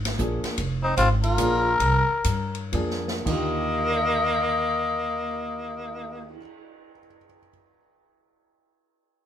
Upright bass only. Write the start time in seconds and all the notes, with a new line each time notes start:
Already playing: G#1
0.19 A#1
0.44 muted upright bass stroke
0.58 F1
0.97 G#1
1.38 A#1
1.80 C2
2.25 G2
2.73 F2
3.26 D#2